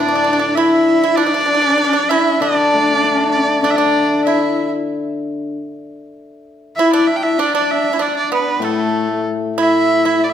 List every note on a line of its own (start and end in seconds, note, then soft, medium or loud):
0.00 0.56 A2 medium
0.00 1.80 D3 medium
0.00 0.25 E3 soft
0.00 0.56 A3 soft
0.00 0.58 D4 medium
0.00 0.56 D5 medium
0.08 0.14 D4 medium
0.15 0.23 D4 medium
0.24 0.31 D4 medium
0.33 0.38 D4 medium
0.39 0.46 D4 medium
0.55 1.20 E4 medium
0.55 1.01 E4 medium
0.55 1.17 E5 medium
1.04 1.17 E4 medium
1.16 1.25 D4 medium
1.16 2.40 D4 medium
1.16 2.10 D5 loud
1.26 1.33 D4 medium
1.34 1.40 D4 medium
1.41 1.45 D4 medium
1.46 1.53 D4 medium
1.54 1.60 D4 medium
1.62 1.69 D4 medium
1.70 1.77 D4 medium
1.78 1.83 D4 medium
1.85 1.92 D4 medium
1.93 2.00 D4 medium
2.09 2.40 E4 medium
2.09 2.41 E5 medium
2.40 3.62 D3 medium
2.40 3.60 D4 medium
2.40 3.31 D5 loud
2.74 3.96 A3 soft
3.04 4.27 D4 soft
3.31 3.61 D5 medium
3.62 5.53 D3 medium
3.62 3.77 D4 medium
3.62 3.76 D4 medium
3.62 3.71 D5 medium
3.70 3.77 E5 medium
3.76 4.29 D4 medium
3.76 4.23 D4 medium
3.76 4.24 D5 medium
4.24 4.71 E4 medium
4.24 4.74 E4 medium
4.24 4.70 E5 medium
6.76 7.19 E4 medium
6.76 6.93 E4 medium
6.76 6.91 E5 medium
6.93 7.36 D4 medium
6.93 7.08 D5 medium
7.07 7.18 E5 medium
7.16 7.24 G5 medium
7.23 7.39 E4 medium
7.23 7.40 E5 medium
7.37 8.00 D4 medium
7.37 7.54 D4 medium
7.37 7.54 D5 medium
7.54 7.91 D4 medium
7.54 7.72 D5 medium
7.71 8.03 E5 medium
7.93 7.99 E4 medium
7.99 8.28 D4 medium
7.99 8.64 D4 medium
7.99 8.16 D5 medium
8.16 8.30 D5 medium
8.32 8.60 B3 medium
8.32 8.66 B4 medium
8.60 10.33 A2 medium
8.60 9.21 A3 medium
8.60 9.25 A3 medium
8.64 9.26 A4 medium
9.58 10.02 E4 medium
9.58 10.33 E4 medium
9.58 10.25 E5 loud
10.05 10.33 E4 medium
10.24 10.31 D5 medium
10.29 10.33 E5 medium